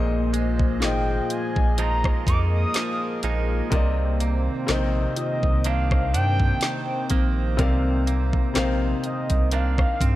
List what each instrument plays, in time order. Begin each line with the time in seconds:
Already playing: sub bass A#1, grand piano A#2 A#3 G#4 C5 D#5, clean electric guitar A#2 G#3 D#4, analog synth pad A#3 F4 G#4 C5 D#5
0.33 clean electric guitar G#3, closed hi-hat
0.60 kick
0.80 sub bass G#1, grand piano A#2 A#3 G#4 C5, clean electric guitar F3, synth pluck D#4, soft synth lead G5, snare, closed hi-hat
0.84 grand piano D#5
1.30 soft synth lead G#5, closed hi-hat
1.56 sub bass A#1, kick
1.78 clean electric guitar F3 G#3 D#4, analog synth pad A#4, soft synth lead A#5, closed hi-hat
2.04 kick, cross-stick
2.27 sub bass F2, clean electric guitar D#4, soft synth lead D6, kick, closed hi-hat
2.54 soft synth lead D#6
2.74 clean electric guitar F3, snare, closed hi-hat
3.23 sub bass A#1, clean electric guitar F3 G#3 D#4, closed hi-hat
3.70 sub bass C2, grand piano C3 C4 A#4 D5, analog synth pad C3 D#3 C4 C5, clean electric guitar C3, kick, closed hi-hat
3.75 grand piano D#5
4.20 clean electric guitar A#3, closed hi-hat
4.67 sub bass A#1, grand piano C3 C4 A#4 C5, clean electric guitar D#3, snare, closed hi-hat
4.71 grand piano D#4
5.17 synth pluck F4, soft synth lead D#5, closed hi-hat
5.43 sub bass C2, kick
5.64 clean electric guitar D#3 A#3 D4, soft synth lead F5, closed hi-hat
5.91 kick, cross-stick
6.14 sub bass G2, clean electric guitar D4, soft synth lead G5, closed hi-hat
6.40 kick
6.61 clean electric guitar D#3, snare, closed hi-hat
7.10 sub bass A#1, clean electric guitar D#3 A#3, synth pluck C4, kick, closed hi-hat
7.57 sub bass C2, grand piano C3 C4 A#4 D5, clean electric guitar C3, kick, closed hi-hat
7.61 grand piano F5
8.07 clean electric guitar A#3, closed hi-hat
8.33 kick
8.54 sub bass A#1, grand piano C3 C4 A#4 C5, clean electric guitar D#3, snare, closed hi-hat
8.58 grand piano F5
9.04 soft synth lead D#5, closed hi-hat
9.30 sub bass C2, kick, closed hi-hat
9.52 clean electric guitar D#3 A#3 D4, soft synth lead F5, closed hi-hat
9.78 kick, cross-stick
10.01 sub bass G2, clean electric guitar C4, synth pluck C4, kick, closed hi-hat